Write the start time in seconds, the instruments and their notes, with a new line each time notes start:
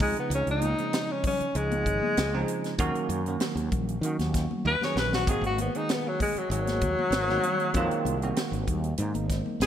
0.00 fretless electric bass C#2, tine electric piano C#3 F3 G#3 C4 D#4, tenor saxophone G#3, kick, open hi-hat
0.16 tenor saxophone B3, closed hi-hat
0.30 fretless electric bass C#2, closed hi-hat
0.35 tenor saxophone C#4
0.47 fretless electric bass C#2, tenor saxophone D#4, closed hi-hat
0.61 closed hi-hat, high conga
0.78 tine electric piano C#3 F3 G#3 C4 D#4, closed hi-hat
0.93 snare, closed hi-hat
1.12 tenor saxophone C#4
1.24 tenor saxophone C#4, kick, open hi-hat, low conga
1.40 muted fretless electric bass stroke, closed hi-hat
1.55 fretless electric bass C#2, tine electric piano C#3 F3 G#3 C4 D#4, tenor saxophone G#3, closed hi-hat
1.71 closed hi-hat, high conga
1.86 fretless electric bass G#1, kick, closed hi-hat
2.03 high conga, low conga
2.17 fretless electric bass C#2, snare, closed hi-hat
2.34 tine electric piano C#3 F3 G#3 C4 D#4
2.48 closed hi-hat
2.64 snare, closed hi-hat
2.78 fretless electric bass D#2, tine electric piano D#3 F#3 A#3 C#4 F#4, kick, closed hi-hat
2.95 muted fretless electric bass stroke, closed hi-hat
3.09 fretless electric bass F#2, closed hi-hat
3.26 tine electric piano D#3 F#3 A#3 C#4 F#4, closed hi-hat
3.40 snare, closed hi-hat
3.56 fretless electric bass D#2, closed hi-hat
3.72 fretless electric bass A#1, kick, closed hi-hat, low conga
3.88 closed hi-hat
4.01 fretless electric bass D#3, tine electric piano D#3 F#3 A#3 C#4 F#4, closed hi-hat
4.19 fretless electric bass D#2, snare, closed hi-hat, high conga
4.34 kick, snare, closed hi-hat
4.51 high conga, low conga
4.65 fretless electric bass D#2, tenor saxophone B4, high tom
4.81 tine electric piano D#3 F#3 A#3 C#4 G#4, tenor saxophone C#5, snare, high conga
4.96 fretless electric bass A#1, tenor saxophone B4, snare
5.13 tenor saxophone F#4, snare
5.27 fretless electric bass G#1, tine electric piano D#3 G#3 A#3 C4 F#4, tenor saxophone G#4, kick, closed hi-hat
5.41 fretless electric bass G#1, closed hi-hat
5.46 tenor saxophone F#4
5.58 tenor saxophone B3, closed hi-hat, high conga
5.75 tine electric piano D#3 G#3 A#3 C4 G#4, tenor saxophone D#4, closed hi-hat
5.89 tenor saxophone B3, snare, closed hi-hat
6.08 tenor saxophone F#3
6.20 tenor saxophone G#3, kick, open hi-hat, low conga
6.35 tenor saxophone F#3, muted fretless electric bass stroke, closed hi-hat
6.50 fretless electric bass G#1, tine electric piano D#3 G#3 A#3 C4 G#4, tenor saxophone F#3, closed hi-hat
6.67 snare, closed hi-hat, high conga
6.81 fretless electric bass D#2, kick, closed hi-hat
6.97 muted fretless electric bass stroke, high conga, low conga
7.11 fretless electric bass G#1, snare, closed hi-hat
7.28 tine electric piano D#3 G#3 A#3 C4 F#4, snare, high conga
7.43 closed hi-hat, low conga
7.60 closed hi-hat
7.74 fretless electric bass F2, tine electric piano D#3 G#3 A#3 C4 F4, kick, closed hi-hat
7.91 muted fretless electric bass stroke, closed hi-hat
8.05 fretless electric bass C2, closed hi-hat, high conga
8.22 tine electric piano D#3 G#3 A#3 C4 F#4, closed hi-hat
8.36 snare, closed hi-hat
8.52 fretless electric bass G#1, closed hi-hat
8.67 fretless electric bass D#2, kick, closed hi-hat, low conga
8.84 closed hi-hat
8.98 fretless electric bass G#2, tine electric piano D#3 G#3 A#3 C4 D#4, closed hi-hat
9.14 fretless electric bass G#1, closed hi-hat, high conga
9.30 kick, snare, closed hi-hat
9.46 high conga, low conga
9.60 fretless electric bass G#1, tenor saxophone G#4, snare, closed hi-hat